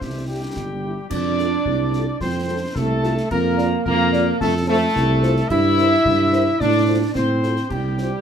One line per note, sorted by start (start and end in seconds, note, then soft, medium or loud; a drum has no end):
0.00 0.47 C2 medium
0.00 0.28 E3 medium
0.00 0.25 G3 medium
0.00 0.26 G4 medium
0.00 0.25 C5 medium
0.00 0.29 E5 medium
0.00 concert bass drum medium
0.00 snare medium
0.26 1.06 G3 medium
0.26 0.39 G3 soft
0.26 0.39 E4 medium
0.26 1.06 G4 medium
0.26 0.39 G4 soft
0.26 1.07 G5 medium
0.56 0.97 G1 medium
0.56 concert bass drum medium
0.56 snare medium
0.84 0.94 G3 medium
0.84 0.94 E4 medium
0.84 0.94 G4 soft
1.09 1.57 F2 medium
1.09 2.16 D4 loud
1.09 2.16 D5 loud
1.09 2.17 D5 loud
1.09 2.17 D6 loud
1.09 concert bass drum medium
1.09 crash medium
1.39 1.49 F4 medium
1.39 1.49 A4 medium
1.39 snare medium
1.66 2.12 C2 medium
1.66 concert bass drum medium
1.93 2.04 F4 medium
1.93 2.03 A4 medium
1.93 snare medium
2.20 2.67 F2 loud
2.20 2.60 C4 loud
2.20 2.76 C5 medium
2.20 2.72 C5 medium
2.20 2.79 C6 medium
2.20 concert bass drum medium
2.20 snare medium
2.49 2.59 F4 medium
2.49 2.59 A4 medium
2.75 3.21 C2 loud
2.75 3.27 A3 loud
2.75 3.30 A4 loud
2.75 3.27 A4 medium
2.75 3.30 A5 loud
2.75 concert bass drum medium
2.75 snare medium
3.03 3.13 F4 medium
3.03 3.13 A4 medium
3.03 snare medium
3.18 snare medium
3.31 3.77 F2 loud
3.31 3.86 A#3 loud
3.31 3.69 A#4 loud
3.31 3.82 A#5 medium
3.31 concert bass drum medium
3.31 crash soft
3.57 3.67 F4 medium
3.57 3.67 D5 medium
3.57 snare medium
3.84 4.32 F2 loud
3.84 4.38 A#3 loud
3.84 4.36 A#4 loud
3.84 4.37 A#4 loud
3.84 4.37 A#5 loud
3.84 concert bass drum medium
4.13 4.23 F4 medium
4.13 4.23 D5 medium
4.13 snare medium
4.40 4.87 F2 loud
4.40 4.53 A3 loud
4.40 4.66 A4 loud
4.40 4.67 A4 loud
4.40 4.46 A5 loud
4.40 concert bass drum medium
4.40 snare medium
4.67 5.47 A3 loud
4.67 4.78 F4 medium
4.67 4.78 A4 medium
4.67 5.47 A4 loud
4.67 5.51 A4 loud
4.67 4.78 C5 medium
4.67 5.46 A5 loud
4.95 5.41 C2 loud
4.95 concert bass drum medium
4.95 snare medium
5.23 5.33 F4 medium
5.23 5.33 A4 medium
5.23 5.33 C5 medium
5.23 snare medium
5.37 snare medium
5.49 5.96 G2 loud
5.49 6.56 E4 loud
5.49 6.61 E5 loud
5.49 6.56 E5 loud
5.49 6.62 E6 loud
5.49 concert bass drum medium
5.49 crash soft
5.78 5.88 E4 medium
5.78 5.88 A#4 medium
5.78 5.88 C5 medium
5.78 snare medium
6.05 6.51 G2 loud
6.05 concert bass drum medium
6.33 6.44 E4 medium
6.33 6.43 A#4 medium
6.33 6.43 C5 medium
6.33 snare medium
6.59 7.06 A2 loud
6.59 7.11 D4 loud
6.59 7.15 D5 loud
6.59 6.96 D5 loud
6.59 6.96 D6 loud
6.59 concert bass drum medium
6.59 snare medium
6.88 6.98 F4 medium
6.88 6.98 A4 medium
6.88 6.98 C5 medium
7.14 7.61 A2 medium
7.14 7.66 C4 loud
7.14 7.66 C5 loud
7.14 7.73 C6 loud
7.14 concert bass drum medium
7.14 snare medium
7.43 7.53 F4 medium
7.43 7.53 A4 medium
7.43 7.53 C5 medium
7.43 snare medium
7.56 snare soft
7.69 8.12 C2 medium
7.69 8.21 G3 loud
7.69 8.21 G4 loud
7.69 8.21 G4 medium
7.69 8.21 G5 medium
7.69 concert bass drum medium
7.69 crash soft
7.98 8.08 F4 medium
7.98 8.08 G4 medium
7.98 8.09 C5 medium
7.98 snare medium